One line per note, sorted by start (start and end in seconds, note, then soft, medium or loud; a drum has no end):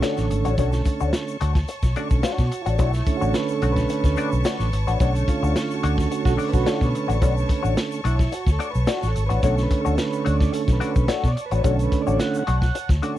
0.00 0.54 D3 medium
0.00 0.54 A3 soft
0.00 0.24 A3 medium
0.00 0.54 C#4 medium
0.00 0.24 D4 medium
0.00 0.25 F#4 medium
0.00 0.82 A4 medium
0.00 13.19 C#5 medium
0.00 0.25 C#5 medium
0.00 13.19 A5 medium
0.00 13.19 C#6 medium
0.00 snare loud
0.00 closed hi-hat medium
0.00 shaker medium
0.17 0.28 A1 medium
0.17 snare soft
0.17 shaker soft
0.30 0.42 G#1 medium
0.30 muted clean electric guitar stroke soft
0.30 closed hi-hat medium
0.30 shaker medium
0.45 0.56 A1 medium
0.45 0.57 A3 medium
0.45 0.58 D4 medium
0.45 0.58 F#4 medium
0.45 0.58 C#5 medium
0.45 closed hi-hat medium
0.45 shaker medium
0.58 0.80 B1 loud
0.58 1.37 D3 medium
0.58 0.80 A3 medium
0.58 1.37 A3 medium
0.58 1.37 C#4 medium
0.58 0.73 D4 medium
0.58 0.73 F#4 medium
0.58 0.72 C#5 medium
0.58 kick loud
0.58 closed hi-hat medium
0.58 shaker medium
0.72 muted clean electric guitar stroke soft
0.72 snare soft
0.72 shaker soft
0.85 muted clean electric guitar stroke soft
0.85 kick loud
0.85 closed hi-hat medium
0.85 shaker medium
1.00 1.11 D2 medium
1.00 1.13 A3 medium
1.00 1.13 D4 medium
1.00 1.13 F#4 medium
1.00 1.13 C#5 medium
1.00 shaker medium
1.13 muted clean electric guitar stroke soft
1.13 snare loud
1.13 closed hi-hat medium
1.13 shaker medium
1.28 shaker medium
1.41 1.63 D2 medium
1.41 1.58 A3 medium
1.41 1.55 D4 medium
1.41 1.55 F#4 medium
1.41 1.54 C#5 medium
1.41 closed hi-hat medium
1.41 shaker medium
1.55 muted clean electric guitar stroke soft
1.55 kick medium
1.55 snare soft
1.55 shaker soft
1.68 muted clean electric guitar stroke soft
1.68 closed hi-hat loud
1.68 shaker medium
1.83 1.93 B1 medium
1.83 kick medium
1.83 snare soft
1.83 shaker medium
1.96 2.21 D3 soft
1.96 2.14 A3 medium
1.96 2.21 A3 soft
1.96 2.22 C#4 soft
1.96 2.10 D4 medium
1.96 2.10 F#4 medium
1.96 2.10 D5 medium
1.96 closed hi-hat medium
1.96 shaker medium
2.10 2.21 B1 loud
2.10 muted clean electric guitar stroke soft
2.10 kick loud
2.10 shaker medium
2.23 2.45 A3 medium
2.23 2.45 D4 medium
2.23 2.46 F#4 medium
2.23 2.63 F#4 loud
2.23 2.46 C#5 medium
2.23 snare loud
2.23 closed hi-hat medium
2.23 shaker medium
2.38 2.49 B2 loud
2.38 kick medium
2.38 snare soft
2.38 shaker medium
2.51 muted clean electric guitar stroke soft
2.51 closed hi-hat medium
2.51 shaker medium
2.62 2.70 F4 medium
2.66 2.79 A1 loud
2.66 2.77 A3 soft
2.66 2.78 D4 medium
2.66 2.78 F#4 medium
2.66 2.78 C#5 medium
2.66 closed hi-hat medium
2.66 shaker soft
2.78 3.01 B1 loud
2.78 3.01 A3 loud
2.78 2.93 D4 medium
2.78 3.18 E4 medium
2.78 2.93 F#4 loud
2.78 2.92 C#5 medium
2.78 kick loud
2.78 closed hi-hat medium
2.78 shaker medium
2.93 muted clean electric guitar stroke soft
2.93 snare soft
2.93 shaker medium
3.06 4.44 D3 medium
3.06 4.44 A3 medium
3.06 4.44 C#4 medium
3.06 muted clean electric guitar stroke soft
3.06 kick loud
3.06 closed hi-hat medium
3.06 shaker medium
3.17 3.35 F#4 loud
3.21 3.32 A1 medium
3.21 3.33 A3 medium
3.21 3.34 D4 medium
3.21 3.34 F#4 medium
3.21 3.34 C#5 medium
3.21 shaker medium
3.34 3.54 B4 loud
3.34 muted clean electric guitar stroke soft
3.34 snare loud
3.34 closed hi-hat medium
3.34 shaker medium
3.48 shaker medium
3.54 3.72 A4 loud
3.62 3.84 B1 loud
3.62 3.80 A3 medium
3.62 3.76 D4 medium
3.62 3.76 F#4 medium
3.62 3.76 C#5 medium
3.62 closed hi-hat medium
3.62 shaker medium
3.72 5.06 B4 loud
3.76 muted clean electric guitar stroke soft
3.76 kick loud
3.76 snare soft
3.76 shaker medium
3.89 muted clean electric guitar stroke soft
3.89 closed hi-hat medium
3.89 shaker medium
4.04 4.14 D2 medium
4.04 kick medium
4.04 snare soft
4.04 shaker medium
4.17 4.35 A3 medium
4.17 4.31 D4 medium
4.17 4.31 F#4 medium
4.17 4.32 D5 medium
4.17 closed hi-hat medium
4.17 shaker medium
4.32 4.43 B1 medium
4.32 shaker medium
4.45 4.70 D3 soft
4.45 4.67 A3 loud
4.45 4.70 A3 soft
4.45 4.70 C#4 medium
4.45 4.67 D4 medium
4.45 4.67 F#4 medium
4.45 4.67 C#5 loud
4.45 snare loud
4.45 closed hi-hat medium
4.45 shaker medium
4.59 4.70 A1 loud
4.59 snare soft
4.59 shaker medium
4.73 4.84 G#1 medium
4.73 muted clean electric guitar stroke soft
4.73 closed hi-hat medium
4.73 shaker medium
4.87 4.98 A1 medium
4.87 4.99 A3 soft
4.87 5.00 D4 medium
4.87 5.00 F#4 medium
4.87 5.00 C#5 medium
4.87 closed hi-hat medium
4.87 shaker medium
5.00 5.22 B1 loud
5.00 7.18 D3 medium
5.00 5.22 A3 medium
5.00 7.18 A3 medium
5.00 7.18 C#4 medium
5.00 5.14 D4 medium
5.00 5.14 F#4 medium
5.00 5.13 C#5 loud
5.00 kick loud
5.00 closed hi-hat medium
5.00 shaker medium
5.15 muted clean electric guitar stroke medium
5.15 closed hi-hat soft
5.15 shaker medium
5.28 5.76 F4 loud
5.28 muted clean electric guitar stroke soft
5.28 kick loud
5.28 closed hi-hat medium
5.28 shaker medium
5.43 5.53 D2 medium
5.43 5.54 A3 soft
5.43 5.55 D4 medium
5.43 5.55 F#4 soft
5.43 5.55 C#5 medium
5.43 shaker medium
5.56 muted clean electric guitar stroke soft
5.56 snare loud
5.56 closed hi-hat medium
5.56 shaker medium
5.71 6.09 F#4 medium
5.71 shaker medium
5.83 6.05 D2 medium
5.83 6.01 A3 medium
5.83 5.98 D4 medium
5.83 5.98 F#4 medium
5.83 5.97 C#5 medium
5.83 closed hi-hat loud
5.83 shaker medium
5.98 muted clean electric guitar stroke medium
5.98 kick medium
5.98 snare soft
5.98 shaker medium
6.11 6.28 F#4 medium
6.11 muted clean electric guitar stroke soft
6.11 closed hi-hat loud
6.11 shaker medium
6.25 6.36 B1 medium
6.25 6.34 F#4 loud
6.25 kick medium
6.25 snare soft
6.25 shaker medium
6.30 6.49 A4 medium
6.37 6.56 A3 medium
6.37 6.53 D4 medium
6.37 6.52 F#4 medium
6.37 6.53 D5 medium
6.37 open hi-hat medium
6.37 shaker medium
6.48 6.67 B4 medium
6.53 6.64 B1 medium
6.53 6.88 F#4 loud
6.53 muted clean electric guitar stroke soft
6.53 kick loud
6.53 shaker medium
6.66 6.88 A3 medium
6.66 6.88 D4 medium
6.66 6.88 F#4 medium
6.66 6.86 A4 loud
6.66 6.89 C#5 loud
6.66 snare loud
6.66 closed hi-hat medium
6.66 shaker medium
6.81 6.91 B2 medium
6.81 kick loud
6.81 snare soft
6.81 shaker medium
6.85 7.64 B4 loud
6.94 muted clean electric guitar stroke soft
6.94 closed hi-hat medium
6.94 shaker medium
7.08 7.22 A1 loud
7.08 7.20 A3 medium
7.08 7.21 D4 medium
7.08 7.21 F#4 medium
7.08 7.21 C#5 medium
7.08 closed hi-hat medium
7.08 shaker medium
7.21 7.43 B1 loud
7.21 8.01 D3 medium
7.21 7.44 A3 medium
7.21 8.01 A3 soft
7.21 8.01 C#4 medium
7.21 7.36 D4 medium
7.21 7.35 F#4 medium
7.21 7.35 C#5 medium
7.21 kick loud
7.21 closed hi-hat medium
7.21 shaker medium
7.36 muted clean electric guitar stroke soft
7.36 shaker medium
7.49 muted clean electric guitar stroke soft
7.49 kick loud
7.49 closed hi-hat medium
7.49 shaker medium
7.63 7.75 A1 medium
7.63 7.76 A3 soft
7.63 7.76 D4 medium
7.63 7.76 F#4 medium
7.63 7.76 C#5 medium
7.63 shaker medium
7.77 muted clean electric guitar stroke soft
7.77 snare loud
7.77 closed hi-hat medium
7.77 shaker medium
7.92 shaker medium
8.04 8.26 B1 medium
8.04 8.22 A3 medium
8.04 8.18 D4 medium
8.04 8.34 E4 medium
8.04 8.18 F#4 medium
8.04 8.17 C#5 medium
8.04 closed hi-hat medium
8.04 shaker medium
8.18 muted clean electric guitar stroke medium
8.18 kick loud
8.18 snare soft
8.18 shaker medium
8.32 8.50 F#4 medium
8.32 muted clean electric guitar stroke soft
8.32 closed hi-hat medium
8.32 shaker medium
8.47 8.57 D2 medium
8.47 kick medium
8.47 snare soft
8.47 shaker medium
8.52 8.69 A4 medium
8.59 8.77 A3 medium
8.59 8.73 D4 medium
8.59 8.73 F#4 medium
8.59 8.73 D5 medium
8.59 closed hi-hat medium
8.59 shaker medium
8.70 8.89 B4 medium
8.70 muted clean electric guitar stroke soft
8.75 8.85 B1 loud
8.75 shaker medium
8.87 9.09 A3 medium
8.87 9.10 D4 medium
8.87 9.10 F#4 medium
8.87 9.08 F#4 medium
8.87 9.10 C#5 medium
8.87 snare loud
8.87 closed hi-hat medium
8.87 shaker medium
9.02 9.13 A1 medium
9.02 snare soft
9.02 shaker medium
9.08 9.24 A4 loud
9.15 9.28 G#1 medium
9.15 muted clean electric guitar stroke soft
9.15 closed hi-hat medium
9.15 shaker medium
9.26 9.42 D4 medium
9.26 9.43 F#4 medium
9.26 9.45 B4 medium
9.26 9.43 C#5 medium
9.26 closed hi-hat medium
9.26 shaker medium
9.30 9.41 A1 loud
9.30 9.42 A3 soft
9.43 9.65 B1 loud
9.43 10.80 D3 medium
9.43 9.65 A3 medium
9.43 10.80 A3 medium
9.43 10.81 C#4 medium
9.43 9.57 D4 medium
9.43 9.57 F#4 loud
9.43 9.63 A4 medium
9.43 9.56 C#5 loud
9.43 kick loud
9.43 closed hi-hat medium
9.43 shaker medium
9.57 muted clean electric guitar stroke medium
9.57 snare soft
9.57 shaker medium
9.63 9.81 B4 medium
9.70 muted clean electric guitar stroke soft
9.70 kick loud
9.70 closed hi-hat medium
9.70 shaker medium
9.81 10.00 A4 loud
9.81 9.97 C#5 medium
9.85 9.96 D2 medium
9.85 9.96 A3 medium
9.85 9.96 D4 medium
9.85 9.97 F#4 medium
9.85 shaker medium
9.98 10.25 B4 loud
9.98 snare loud
9.98 closed hi-hat medium
9.98 shaker medium
10.13 shaker medium
10.25 10.48 D2 medium
10.25 10.43 A3 medium
10.25 10.39 D4 medium
10.25 10.39 F#4 medium
10.25 10.38 C#5 medium
10.25 10.53 D5 loud
10.25 closed hi-hat medium
10.25 shaker medium
10.40 muted clean electric guitar stroke soft
10.40 kick medium
10.40 snare soft
10.40 shaker medium
10.52 10.63 A4 loud
10.52 muted clean electric guitar stroke soft
10.52 closed hi-hat loud
10.52 shaker medium
10.68 10.78 B1 medium
10.68 kick medium
10.68 snare soft
10.68 shaker medium
10.72 10.90 B4 medium
10.80 11.06 D3 medium
10.80 10.98 A3 medium
10.80 11.06 A3 soft
10.80 11.07 C#4 soft
10.80 10.95 D4 medium
10.80 10.95 F#4 medium
10.80 10.95 D5 medium
10.80 closed hi-hat medium
10.80 shaker medium
10.91 11.10 B4 medium
10.96 11.06 B1 medium
10.96 muted clean electric guitar stroke soft
10.96 kick loud
10.96 shaker medium
11.08 11.31 A3 medium
11.08 11.31 D4 loud
11.08 11.31 F#4 medium
11.08 11.28 A4 medium
11.08 11.31 C#5 loud
11.08 snare loud
11.08 closed hi-hat medium
11.08 shaker medium
11.23 11.34 B2 loud
11.23 kick medium
11.23 snare soft
11.23 shaker medium
11.28 11.45 D5 loud
11.36 muted clean electric guitar stroke soft
11.36 closed hi-hat medium
11.36 shaker medium
11.46 11.63 B4 medium
11.51 11.62 A1 loud
11.51 11.62 A3 medium
11.51 11.63 D4 medium
11.51 11.63 F#4 medium
11.51 11.63 C#5 medium
11.51 closed hi-hat medium
11.51 shaker medium
11.63 11.86 B1 loud
11.63 12.43 D3 medium
11.63 11.86 A3 medium
11.63 12.44 A3 medium
11.63 12.44 C#4 medium
11.63 11.78 D4 medium
11.63 11.78 F#4 loud
11.63 11.73 A4 medium
11.63 11.78 C#5 medium
11.63 kick loud
11.63 closed hi-hat medium
11.63 shaker medium
11.79 muted clean electric guitar stroke soft
11.79 closed hi-hat soft
11.79 shaker medium
11.83 12.02 B4 loud
11.91 muted clean electric guitar stroke soft
11.91 kick loud
11.91 closed hi-hat medium
11.91 shaker medium
12.02 12.21 D5 loud
12.07 12.17 A1 medium
12.07 12.18 A3 soft
12.07 12.19 D4 medium
12.07 12.19 F#4 medium
12.07 12.19 C#5 medium
12.07 shaker medium
12.20 12.37 F#5 loud
12.20 snare loud
12.20 closed hi-hat medium
12.20 shaker medium
12.34 shaker medium
12.39 12.90 F#5 loud
12.47 12.69 B1 loud
12.47 12.65 A3 medium
12.47 12.62 D4 medium
12.47 12.61 F#4 medium
12.47 12.61 C#5 medium
12.47 closed hi-hat medium
12.47 shaker medium
12.62 muted clean electric guitar stroke soft
12.62 kick loud
12.62 snare soft
12.62 shaker soft
12.75 muted clean electric guitar stroke soft
12.75 closed hi-hat loud
12.75 shaker medium
12.89 13.00 D2 medium
12.89 kick medium
12.89 snare soft
12.89 shaker medium
13.02 13.19 D3 soft
13.02 13.19 A3 medium
13.02 13.19 A3 soft
13.02 13.19 C#4 medium
13.02 13.17 D4 medium
13.02 13.17 F#4 medium
13.02 13.17 D5 medium
13.02 closed hi-hat medium
13.02 shaker medium